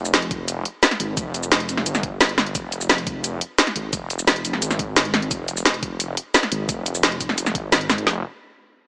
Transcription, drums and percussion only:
0.05 shaker
0.14 snare, closed hi-hat, shaker
0.22 closed hi-hat
0.31 kick, closed hi-hat
0.48 closed hi-hat, shaker
0.65 closed hi-hat
0.83 snare, closed hi-hat, shaker
0.91 snare, closed hi-hat
1.00 closed hi-hat
1.17 kick, closed hi-hat, shaker
1.34 closed hi-hat, shaker
1.43 shaker
1.52 snare, closed hi-hat, shaker
1.60 closed hi-hat
1.69 closed hi-hat, shaker
1.77 snare
1.86 closed hi-hat, shaker
1.95 snare, shaker
2.03 kick, closed hi-hat
2.21 snare, closed hi-hat, shaker
2.29 closed hi-hat
2.38 snare, closed hi-hat
2.46 closed hi-hat
2.55 kick, closed hi-hat, shaker
2.72 closed hi-hat, shaker
2.81 shaker
2.90 snare, closed hi-hat, shaker
2.98 closed hi-hat
3.07 kick, closed hi-hat
3.24 closed hi-hat, shaker
3.41 closed hi-hat
3.58 snare, closed hi-hat, shaker
3.67 snare, closed hi-hat
3.76 closed hi-hat
3.93 kick, closed hi-hat, shaker
4.10 closed hi-hat, shaker
4.19 shaker
4.27 snare, closed hi-hat, shaker
4.36 closed hi-hat
4.45 closed hi-hat, shaker
4.53 snare
4.62 closed hi-hat, shaker
4.71 snare, shaker
4.79 kick, closed hi-hat
4.96 snare, closed hi-hat, shaker
5.05 closed hi-hat
5.14 snare, closed hi-hat
5.22 closed hi-hat
5.31 kick, closed hi-hat, shaker
5.48 closed hi-hat, shaker
5.57 shaker
5.65 snare, closed hi-hat, shaker
5.74 closed hi-hat
5.83 kick, closed hi-hat
6.00 closed hi-hat, shaker
6.17 closed hi-hat
6.34 snare, closed hi-hat, shaker
6.43 snare, closed hi-hat
6.52 closed hi-hat
6.69 kick, closed hi-hat, shaker
6.86 closed hi-hat, shaker
6.95 shaker
7.03 snare, closed hi-hat, shaker
7.12 closed hi-hat
7.21 kick, closed hi-hat, shaker
7.29 snare
7.38 closed hi-hat, shaker
7.46 snare, shaker
7.55 kick, closed hi-hat
7.72 snare, closed hi-hat, shaker
7.81 closed hi-hat
7.90 snare, closed hi-hat, shaker
7.98 closed hi-hat
8.07 snare

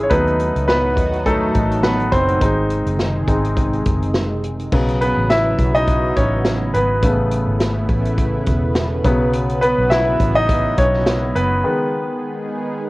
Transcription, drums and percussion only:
0.10 kick, closed hi-hat
0.27 closed hi-hat
0.39 closed hi-hat
0.56 closed hi-hat
0.69 snare
0.97 kick, closed hi-hat
1.13 closed hi-hat
1.26 kick, closed hi-hat
1.55 kick, closed hi-hat
1.71 closed hi-hat
1.83 snare
2.00 closed hi-hat
2.12 kick, closed hi-hat
2.28 closed hi-hat
2.41 kick, closed hi-hat
2.70 closed hi-hat
2.87 closed hi-hat
2.99 snare
3.28 kick, closed hi-hat
3.45 closed hi-hat
3.57 kick, closed hi-hat
3.73 closed hi-hat
3.85 kick, closed hi-hat
4.02 closed hi-hat
4.14 snare
4.44 closed hi-hat
4.59 closed hi-hat
4.72 kick, crash
4.88 closed hi-hat
5.01 closed hi-hat
5.30 snare, closed hi-hat
5.59 kick, closed hi-hat
5.75 closed hi-hat
5.88 kick, closed hi-hat
6.16 kick, closed hi-hat
6.45 snare, closed hi-hat
6.74 closed hi-hat
7.03 kick, closed hi-hat
7.31 closed hi-hat
7.60 snare, closed hi-hat
7.89 kick, closed hi-hat
8.05 closed hi-hat
8.18 kick, closed hi-hat
8.46 kick, closed hi-hat
8.75 snare, closed hi-hat
9.04 kick, closed hi-hat
9.33 closed hi-hat
9.49 closed hi-hat
9.62 closed hi-hat
9.91 snare, closed hi-hat
10.20 kick, closed hi-hat
10.49 kick, closed hi-hat
10.77 kick, closed hi-hat
10.94 snare
11.06 snare, closed hi-hat
11.36 closed hi-hat

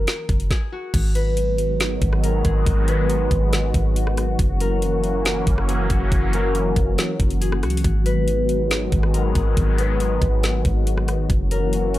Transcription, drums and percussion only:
0.07 snare, closed hi-hat
0.29 kick, closed hi-hat
0.40 closed hi-hat
0.51 kick, snare
0.94 kick, closed hi-hat, crash
1.15 closed hi-hat
1.37 closed hi-hat
1.58 closed hi-hat
1.80 snare, closed hi-hat
2.02 kick, closed hi-hat
2.13 cross-stick
2.24 closed hi-hat
2.45 kick, closed hi-hat
2.66 kick, closed hi-hat
2.88 closed hi-hat
3.10 closed hi-hat
3.31 kick, closed hi-hat
3.53 snare, closed hi-hat
3.74 kick, closed hi-hat
3.96 closed hi-hat
4.07 cross-stick
4.17 cross-stick, closed hi-hat
4.39 kick, closed hi-hat
4.60 closed hi-hat
4.82 closed hi-hat
5.04 closed hi-hat
5.25 snare, closed hi-hat
5.47 kick, closed hi-hat
5.58 cross-stick
5.69 closed hi-hat
5.90 kick, closed hi-hat
6.12 kick, closed hi-hat
6.33 closed hi-hat
6.55 closed hi-hat
6.76 kick, closed hi-hat
6.98 snare, closed hi-hat
7.20 kick, closed hi-hat
7.30 closed hi-hat
7.42 closed hi-hat
7.52 cross-stick
7.63 cross-stick, closed hi-hat
7.70 closed hi-hat
7.77 closed hi-hat
7.84 kick, closed hi-hat
8.06 closed hi-hat
8.28 closed hi-hat
8.49 closed hi-hat
8.71 snare, closed hi-hat
8.92 kick, closed hi-hat
9.03 cross-stick
9.14 closed hi-hat
9.35 kick, closed hi-hat
9.57 kick, closed hi-hat
9.78 closed hi-hat
10.00 closed hi-hat
10.22 kick, closed hi-hat
10.43 snare, closed hi-hat
10.65 kick, closed hi-hat
10.87 closed hi-hat
10.98 cross-stick
11.08 cross-stick, closed hi-hat
11.30 kick, closed hi-hat
11.51 closed hi-hat
11.73 closed hi-hat
11.94 closed hi-hat

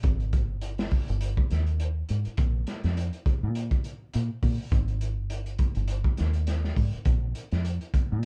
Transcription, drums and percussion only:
0.03 kick, closed hi-hat
0.20 closed hi-hat
0.33 kick, closed hi-hat
0.61 closed hi-hat
0.78 snare, closed hi-hat
0.91 kick, open hi-hat
1.08 closed hi-hat
1.21 closed hi-hat
1.37 kick
1.51 snare, closed hi-hat
1.67 closed hi-hat
1.80 closed hi-hat
2.09 closed hi-hat
2.25 closed hi-hat
2.38 kick, closed hi-hat
2.67 snare, closed hi-hat
2.84 snare, closed hi-hat
2.97 closed hi-hat
3.13 closed hi-hat
3.26 kick, closed hi-hat
3.55 closed hi-hat
3.71 kick, closed hi-hat
3.84 closed hi-hat
4.13 closed hi-hat
4.43 kick, open hi-hat
4.72 kick, closed hi-hat
4.88 closed hi-hat
5.01 closed hi-hat
5.30 closed hi-hat
5.46 closed hi-hat
5.59 kick, closed hi-hat
5.75 closed hi-hat
5.88 closed hi-hat
6.04 kick
6.17 snare, closed hi-hat
6.33 closed hi-hat
6.47 snare, closed hi-hat
6.64 snare
6.76 kick, open hi-hat
6.93 closed hi-hat
7.05 kick, closed hi-hat
7.35 closed hi-hat
7.51 snare, closed hi-hat
7.65 closed hi-hat
7.81 closed hi-hat
7.94 kick, closed hi-hat

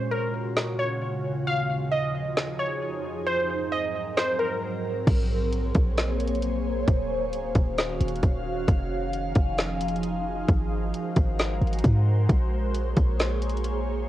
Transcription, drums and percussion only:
0.57 snare
2.37 snare
4.18 snare
5.07 kick, closed hi-hat, crash
5.53 closed hi-hat
5.75 kick, closed hi-hat
5.98 snare, closed hi-hat
6.20 closed hi-hat
6.28 closed hi-hat
6.35 closed hi-hat
6.42 closed hi-hat
6.88 kick, closed hi-hat
7.33 closed hi-hat
7.55 kick, closed hi-hat
7.78 snare, closed hi-hat
8.00 closed hi-hat
8.08 closed hi-hat
8.15 closed hi-hat
8.23 kick, closed hi-hat
8.68 kick, closed hi-hat
9.13 closed hi-hat
9.35 kick, closed hi-hat
9.58 snare, closed hi-hat
9.81 closed hi-hat
9.88 closed hi-hat
9.96 closed hi-hat
10.03 closed hi-hat
10.49 kick, closed hi-hat
10.94 closed hi-hat
11.16 kick, closed hi-hat
11.39 snare, closed hi-hat
11.61 closed hi-hat
11.67 closed hi-hat
11.73 closed hi-hat
11.78 closed hi-hat
11.84 kick, closed hi-hat
12.29 kick, closed hi-hat
12.75 closed hi-hat
12.97 kick, closed hi-hat
13.20 snare, closed hi-hat
13.42 closed hi-hat
13.50 closed hi-hat
13.57 closed hi-hat
13.64 closed hi-hat

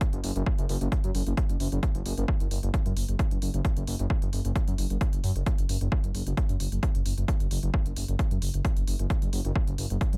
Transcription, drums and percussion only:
0.01 kick, closed hi-hat
0.13 closed hi-hat
0.24 open hi-hat
0.36 closed hi-hat
0.46 kick
0.58 closed hi-hat
0.69 open hi-hat
0.81 closed hi-hat
0.92 kick, closed hi-hat
1.04 closed hi-hat
1.15 open hi-hat
1.27 closed hi-hat
1.37 kick, closed hi-hat
1.49 closed hi-hat
1.60 open hi-hat
1.72 closed hi-hat
1.83 kick, closed hi-hat
1.95 closed hi-hat
2.06 open hi-hat
2.18 closed hi-hat
2.28 kick
2.40 closed hi-hat
2.51 open hi-hat
2.63 closed hi-hat
2.74 kick, closed hi-hat
2.86 closed hi-hat
2.97 open hi-hat
3.09 closed hi-hat
3.19 kick, closed hi-hat
3.31 closed hi-hat
3.42 open hi-hat
3.54 closed hi-hat
3.65 kick, closed hi-hat
3.77 closed hi-hat
3.87 open hi-hat
3.99 closed hi-hat
4.10 kick
4.22 closed hi-hat
4.33 open hi-hat
4.45 closed hi-hat
4.56 kick, closed hi-hat
4.68 closed hi-hat
4.78 open hi-hat
4.90 closed hi-hat
5.01 kick, closed hi-hat
5.13 closed hi-hat
5.24 open hi-hat
5.36 closed hi-hat
5.46 kick, closed hi-hat
5.58 closed hi-hat
5.69 open hi-hat
5.81 closed hi-hat
5.92 kick
6.04 closed hi-hat
6.15 open hi-hat
6.27 closed hi-hat
6.37 kick, closed hi-hat
6.49 closed hi-hat
6.60 open hi-hat
6.72 closed hi-hat
6.83 kick, closed hi-hat
6.95 closed hi-hat
7.06 open hi-hat
7.18 closed hi-hat
7.28 kick, closed hi-hat
7.40 closed hi-hat
7.51 open hi-hat
7.63 closed hi-hat
7.74 kick
7.86 closed hi-hat
7.96 open hi-hat
8.08 closed hi-hat
8.19 kick, closed hi-hat
8.31 closed hi-hat
8.42 open hi-hat
8.54 closed hi-hat
8.65 kick, closed hi-hat
8.77 closed hi-hat
8.88 open hi-hat
8.99 closed hi-hat
9.10 kick, closed hi-hat
9.22 closed hi-hat
9.33 open hi-hat
9.45 closed hi-hat
9.56 kick
9.67 closed hi-hat
9.78 open hi-hat
9.90 closed hi-hat
10.01 kick, closed hi-hat
10.13 closed hi-hat

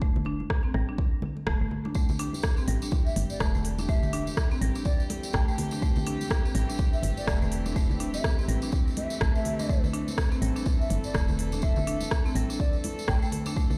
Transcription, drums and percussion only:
0.02 kick
0.16 low conga
0.25 muted conga
0.40 high conga
0.50 kick, cross-stick, high conga
0.63 muted conga
0.74 cross-stick
0.98 kick, muted conga
1.22 high conga, low conga
1.37 muted conga
1.47 kick, cross-stick
1.71 low conga
1.85 muted conga, high conga
1.95 kick, tambourine
2.09 tambourine, low conga
2.19 open hi-hat, muted conga
2.33 tambourine, high conga
2.43 kick, cross-stick, tambourine, high conga
2.57 tambourine, muted conga
2.68 open hi-hat
2.82 tambourine
2.91 kick, tambourine, muted conga, high conga
3.06 tambourine
3.16 open hi-hat, high conga
3.30 tambourine, muted conga
3.40 kick, cross-stick, tambourine
3.54 tambourine, high conga, low conga
3.65 open hi-hat
3.78 tambourine, muted conga, high conga
3.89 kick, tambourine
4.03 tambourine, low conga
4.13 open hi-hat, muted conga
4.27 tambourine, high conga
4.36 kick, cross-stick, tambourine, high conga
4.51 tambourine, muted conga
4.62 open hi-hat
4.75 tambourine
4.85 kick, tambourine, muted conga
5.00 tambourine
5.10 open hi-hat, high conga
5.23 tambourine, muted conga
5.33 kick, cross-stick, tambourine
5.48 tambourine
5.58 open hi-hat, low conga
5.71 tambourine, muted conga, high conga
5.82 kick, tambourine
5.96 tambourine, low conga
6.07 open hi-hat, muted conga
6.21 tambourine, high conga
6.30 kick, cross-stick, tambourine, high conga
6.45 tambourine, muted conga
6.55 open hi-hat
6.70 tambourine
6.79 kick, tambourine, muted conga, high conga
6.93 tambourine
7.02 open hi-hat, high conga
7.17 tambourine, muted conga
7.27 kick, cross-stick, tambourine
7.42 tambourine, high conga, low conga
7.52 open hi-hat
7.66 tambourine, muted conga, high conga
7.76 kick, tambourine
7.90 tambourine, low conga
8.00 open hi-hat, muted conga
8.14 tambourine, high conga
8.24 kick, cross-stick, tambourine, high conga
8.39 tambourine, muted conga
8.49 open hi-hat
8.62 tambourine
8.72 kick, tambourine, muted conga
8.88 tambourine
8.97 open hi-hat, high conga
9.10 tambourine, muted conga
9.21 kick, cross-stick
9.35 tambourine
9.45 open hi-hat, low conga
9.59 tambourine, muted conga, high conga
9.69 kick, tambourine
9.84 tambourine, low conga
9.93 open hi-hat, muted conga
10.08 tambourine, high conga
10.18 kick, cross-stick, tambourine, high conga
10.32 tambourine, muted conga
10.42 open hi-hat
10.56 tambourine
10.66 kick, tambourine, muted conga, high conga
10.81 tambourine
10.90 open hi-hat, high conga
11.04 tambourine, muted conga
11.14 kick, cross-stick, tambourine
11.28 tambourine, high conga, low conga
11.39 open hi-hat
11.52 tambourine, muted conga, high conga
11.62 kick, tambourine
11.76 tambourine, low conga
11.87 open hi-hat, muted conga
12.01 tambourine, high conga
12.11 kick, cross-stick, high conga
12.25 tambourine, muted conga
12.36 open hi-hat
12.50 tambourine
12.60 kick, tambourine, muted conga
12.73 tambourine
12.84 open hi-hat, high conga
12.98 tambourine, muted conga
13.08 kick, cross-stick, tambourine
13.22 tambourine
13.32 open hi-hat, low conga
13.46 tambourine, muted conga, high conga
13.57 kick, tambourine
13.70 tambourine, low conga

